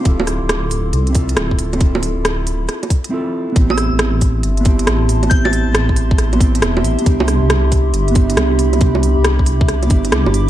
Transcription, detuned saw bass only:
X:1
M:4/4
L:1/16
Q:"Swing 16ths" 1/4=137
K:Am
V:1 name="Detuned saw bass" clef=bass
D,,,3 D,,,4- D,,, C,,4 D,,,4 | D,,,3 D,,,4- D,,, z8 | A,,,3 A,,,4- A,,, G,,,4 A,,,4 | A,,,3 A,,,4- A,,, A,,,4 E,,,2 A,,, z |
C,,3 C,,4- C,, G,,,4 C,,4 | C,,3 C,,4- C,, C,,2 G,,,2 C,, G,,,3 |]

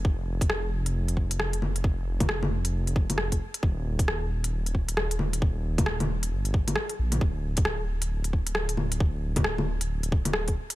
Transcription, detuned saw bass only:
X:1
M:4/4
L:1/8
Q:"Swing 16ths" 1/4=134
K:Eblyd
V:1 name="Detuned saw bass" clef=bass
F,,,6- F,,, F,,, | F,,,6- F,,, z | E,,,6- E,,, E,,, | E,,,4 G,,,2 z B,,, |
D,,,6- D,,, D,,, | D,,,6- D,,, z |]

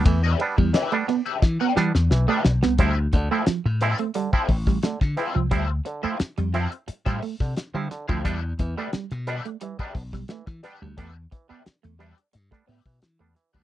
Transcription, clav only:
X:1
M:4/4
L:1/16
Q:1/4=88
K:Ddor
V:1 name="Clav"
E, [B,D] [G,B,D] z E, [G,B,D] [B,D] z3 [G,B,D] z E, [G,B,D] [B,D] z | [F,CE] z D, [F,CE] z2 [F,CE] z D, [F,CE] [CE] z D, z [F,CE] [CE] | [F,CE] z D, [F,CE] z2 [F,CE] z2 [F,CE] z D, z [F,CE] D, [F,CE] | [G,B,D] z E, [G,B,D] z2 [G,B,D] z E, [G,B,D] [B,D] z E, z [G,B,D] [B,D] |
[G,B,D] z E, [G,B,D] z2 [G,B,D] z2 [G,B,D] z E, z [G,B,D] E, [G,B,D] |]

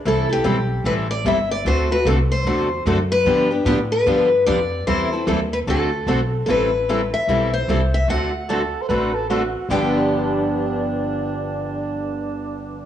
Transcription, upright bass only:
X:1
M:4/4
L:1/8
Q:"Swing" 1/4=149
K:Gmix
V:1 name="Upright bass" clef=bass
C,,2 B,,,2 A,,,2 G,,,2 | D,,2 C,,2 E,,2 ^F,,2 | G,,2 A,,2 G,,2 F,,2 | E,,2 _E,,2 D,,2 B,,,2 |
A,,,4 B,,,2 C,,2 | D,,4 A,,,4 | G,,,8- | G,,,8 |]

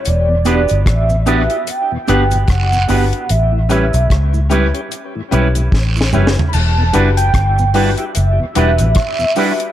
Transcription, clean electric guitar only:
X:1
M:4/4
L:1/8
Q:"Swing 16ths" 1/4=74
K:Edor
V:1 name="Clean electric guitar"
z [B,DGB] z [B,DGB] z [B,DGB] z [B,DGB] | z [G,CEB] z [G,CEB] z [G,CEB] z [G,CEB] | z [G,DEB] z [G,DEB] z [G,DEB] z [G,DEB] |]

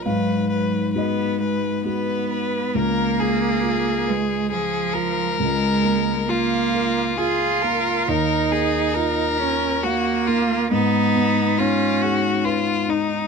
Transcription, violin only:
X:1
M:3/4
L:1/8
Q:1/4=68
K:Dbmix
V:1 name="Violin"
c c c c c c | B A3 A B- | B2 F2 A B | B A B2 G F |
E2 F G F E |]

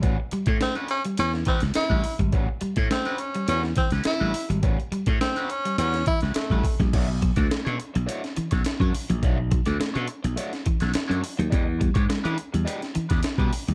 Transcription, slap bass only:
X:1
M:4/4
L:1/16
Q:1/4=105
K:Amix
V:1 name="Slap bass" clef=bass
A,,, z2 A,, z4 E,,2 z C,, z A,,, z ^G,,, | A,,, z2 A,, z4 E,,2 z C,, z A,,, z ^G,,, | A,,, z2 A,, z4 E,,2 z C,, z A,,, z _B,,, | B,,,3 D,, z B,, z B,,, z3 B,,, z F,, z _B,,, |
B,,,3 D,, z B,, z B,,, z3 B,,, z F,, z ^D,, | E,,3 ^G,, z E, z E,, z3 E,, z B,, z ^D,, |]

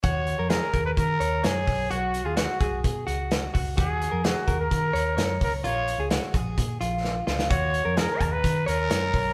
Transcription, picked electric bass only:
X:1
M:4/4
L:1/16
Q:1/4=129
K:Ebm
V:1 name="Picked electric bass" clef=bass
E,,3 F,,2 z E,,2 E,2 E,,2 G,,2 =B,,,2 | =B,,,3 ^D,,2 z B,,,2 =B,,2 ^C,,4 C,,2 | E,,3 F,,2 z E,,2 E,2 E,,2 G,,2 D,,2 | B,,,3 D,,2 z B,,,2 B,,2 B,,,4 D,,2 |
E,,3 F,,2 z E,,2 E,2 E,,2 G,,2 =B,,,2 |]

